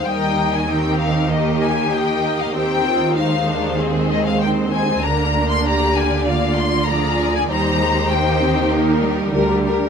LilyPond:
<<
  \new Staff \with { instrumentName = "Violin section" } { \time 4/4 \key ees \major \tempo 4 = 97 g''8. aes''16 g''8 f''8 ees''8 aes''8 g''8. f''16 | g''4 f''4 r8 ees''16 f''16 g''8 aes''8 | bes''8. c'''16 bes''8 aes''8 f''8 c'''8 bes''8. aes''16 | bes''4 g''4 r2 | }
  \new Staff \with { instrumentName = "Violin section" } { \time 4/4 \key ees \major << { ees''4 bes'4 bes'4 ees''4 | c''4 c''2. | bes'4 d''2 d''4 | c''2 bes'4 bes'4 | } \\ { bes'4 g'4 g'4 ees'4 | ees'2 aes'4 c''4 | bes'2. aes'4 | g'2. bes'8 bes'8 | } >> }
  \new Staff \with { instrumentName = "Viola section" } { \time 4/4 \key ees \major << { ees'2 g'2 | g'8 f'8 ees'8 d'8 c'4 c'4 | d'4 g'4 f'4 f'4 | ees'4 ees'2 g'4 | } \\ { g4 c'4 bes4 bes4 | c'4 aes2. | bes2 bes4 f4 | g8 aes8 bes8 c'8 bes8 g4. | } >> }
  \new Staff \with { instrumentName = "Cello section" } { \clef bass \time 4/4 \key ees \major ees1 | ees1 | d1 | ees2. d4 | }
  \new Staff \with { instrumentName = "Double bass section" } { \clef bass \time 4/4 \key ees \major ees,1 | ees,1 | d,1 | ees,2. d,4 | }
>>